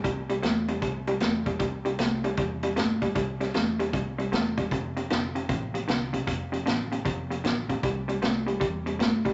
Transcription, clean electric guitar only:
X:1
M:4/4
L:1/8
Q:"Swing" 1/4=154
K:C
V:1 name="Clean electric guitar" clef=bass
[C,G,] [C,G,] [C,A,] [C,G,] [C,G,] [C,G,] [C,A,] [C,G,] | [C,G,] [C,G,] [C,A,] [C,G,] [C,G,] [C,G,] [C,A,] [C,G,] | [C,G,] [C,G,] [C,A,] [C,G,] [C,G,] [C,G,] [C,A,] [C,G,] | [F,,C,] [F,,C,] [F,,D,] [F,,C,] [F,,C,] [F,,C,] [F,,D,] [F,,C,] |
[F,,C,] [F,,C,] [F,,D,] [F,,C,] [F,,C,] [F,,C,] [F,,D,] [F,,C,] | [C,G,] [C,G,] [C,A,] [C,G,] [C,G,] [C,G,] [C,A,] [C,G,] |]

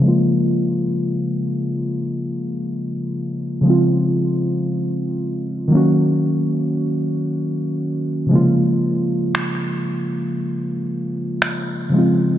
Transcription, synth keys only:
X:1
M:4/4
L:1/8
Q:1/4=58
K:Bbm
V:1 name="Synth keys" clef=bass
[D,F,A,B,F]6- [D,F,A,B,F] [D,F,A,CF]- | [D,F,A,CF]3 [E,G,B,DG]4- [E,G,B,DG] | [C,D,F,A,B,F]6- [C,D,F,A,B,F] [D,F,A,CF] |]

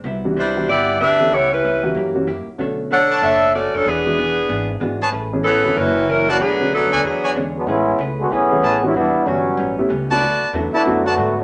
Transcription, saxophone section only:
X:1
M:4/4
L:1/8
Q:"Swing" 1/4=188
K:A
V:1 name="Saxophone section"
z2 [=G,DE=c]2 [B,E=Gd]2 [DGBe]2 | [B,E=Gc] [=G,CEB]3 z4 | z2 [DAcf]2 [DAce]2 [A,CFd] [F,CDA] | [E,B,DG]6 z2 |
z2 [E,B,CA]2 [F,CEB]2 [F,CE^A] [E,^A,CF] | [F,B,DG]2 [F,B,DA]2 [F,B,DG]2 z2 | z8 | z8 |
z8 |]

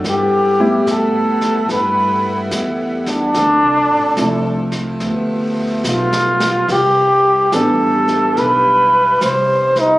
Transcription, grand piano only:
X:1
M:4/4
L:1/8
Q:"Swing" 1/4=72
K:Gdor
V:1 name="Grand piano"
z [G,A,=B,E]3 z4 | z2 [F,A,CE] z4 z | z2 [E,G,=B,D] z4 z |]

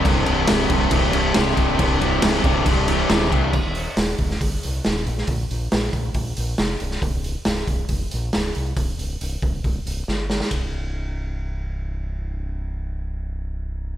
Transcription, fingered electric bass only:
X:1
M:4/4
L:1/8
Q:1/4=138
K:Cm
V:1 name="Fingered electric bass" clef=bass
C,,, C,,, C,,, C,,, C,,,2 C,,, C,,, | C,,,2 C,,, C,,, C,,,2 E,,, C,, | E,,,2 E,,, E,,, G,,, C,, E,,, B,,, | B,,, B,,, B,,, B,,, B,,, B,,, F,,, C,,, |
C,,,2 C,,, C,,, F,,, B,,, C,,, C,, | C,,, C,,, C,,, C,,, C,,, C,,, G,,,2 | C,,,8- | C,,,8 |]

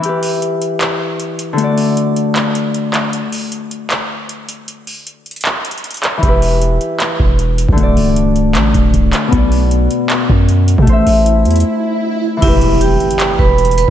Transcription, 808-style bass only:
X:1
M:4/4
L:1/16
Q:1/4=155
K:Em
V:1 name="808-style bass" clef=bass
z16 | z16 | z16 | z16 |
E,,,6 z4 E,,,4- E,,, B,,, | D,,,2 C,,,6 A,,,2 D,,,2 C,,,2 z2 | B,,,6 z4 F,,4- F,, B,, | A,,,2 A,,,4 E,,2 z8 |
E,,,6 z4 E,,,4- E,,, z |]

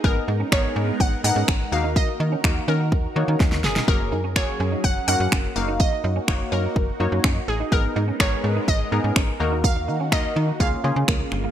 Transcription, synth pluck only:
X:1
M:4/4
L:1/8
Q:1/4=125
K:D#m
V:1 name="Synth pluck"
A2 c2 f f2 e | d3 A3 z G | A2 c2 f f2 e | d3 A3 z G |
A2 c2 d4 | e2 d2 e3 z |]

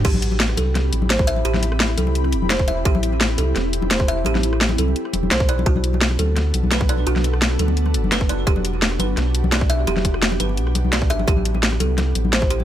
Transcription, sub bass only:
X:1
M:4/4
L:1/8
Q:1/4=171
K:Ador
V:1 name="Sub bass" clef=bass
A,,,3 C,,2 A,,,3 | A,,,3 C,,2 E,,,3 | A,,,3 C,, E,,,4 | A,,,3 C,, z E,,, B,,,2 |
B,,,3 D,,2 B,,,3 | B,,,3 D,,2 F,,,3 | E,,,3 G,,, B,,,4 | E,,,3 G,,, B,,,3 G,,, |
A,,,3 C,,2 A,,,3 |]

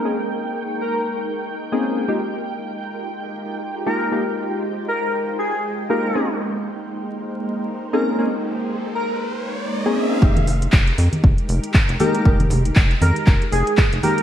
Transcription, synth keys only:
X:1
M:4/4
L:1/16
Q:"Swing 16ths" 1/4=118
K:Fm
V:1 name="Synth keys"
[B,CDEA] z12 [B,CDEA]3 | [A,B,EFG] z12 z [A,B,EFG]2 | [A,B,EFG] z12 z [A,B,EFG]2 | [B,CDEA] z12 z [B,CDEA]2 |
[B,CDEA] z12 [B,CDEA]3 | [A,B,EG] z12 z [A,B,EG]2 | [A,B,EG] z12 z [A,B,EG]2 |]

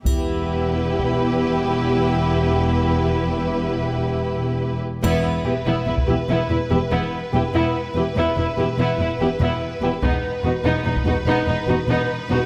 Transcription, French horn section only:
X:1
M:12/8
L:1/16
Q:3/8=96
K:Em
V:1 name="French horn section"
[B,G]24- | [B,G]16- [B,G]6 z2 | z4 [B,G] z4 z [B,G] z4 z [B,G] z4 z [B,G] z | z4 [B,G] z4 z [B,G] z4 z [B,G] z4 z [B,G] z |
z4 [B,F] z4 z [B,F] z4 z [B,F] z4 z [B,F] z |]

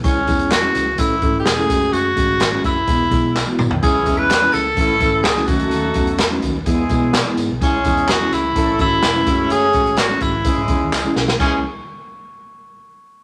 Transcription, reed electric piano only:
X:1
M:4/4
L:1/16
Q:1/4=127
K:C#m
V:1 name="Reed electric piano"
[E,G,CEG] z [E,G,CEG]2 z [E,G,CEG]2 z [E,A,CEA] z [E,A,CEA]2 z [E,A,CEA] [G,A,CF=G^G]2- | [G,A,CF=G^G] z [G,A,CFG]2 z [G,A,CFG]2 z [E,G,B,EG] z [E,G,B,EG]2 z [E,G,B,EF]2 z | [E,G,CEG] z [E,G,CEG]2 z [E,G,CEG]2 z [E,A,CEA] z [E,A,CEA]2 z [E,A,CEF] [F,A,CDF]2- | [F,A,CDF] z [F,A,CDF]2 z [F,A,CDF]2 z [E,G,B,EG] z [E,G,B,EG]2 z [E,G,B,EG]2 z |
[E,G,CEG] z [E,G,CEG]2 z [E,G,CEG]2 z [E,A,CEA] z [E,A,CEF]2 z [E,A,CEB] [G,A,CFG]2- | [G,A,CFG] z [G,A,CFG]2 z [G,A,CFG]2 z [E,G,CEG] z [E,G,CEG]2 z [E,G,CEG]2 z | [G,CEG]2 z12 z2 |]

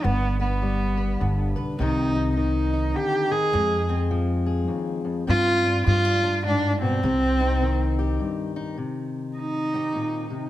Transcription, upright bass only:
X:1
M:3/4
L:1/8
Q:"Swing" 1/4=103
K:Cm
V:1 name="Upright bass" clef=bass
G,,,4 G,,, =B,,, | C,,4 z2 | F,,4 z2 | G,,2 G,,4 |
C,,4 z2 | z6 |]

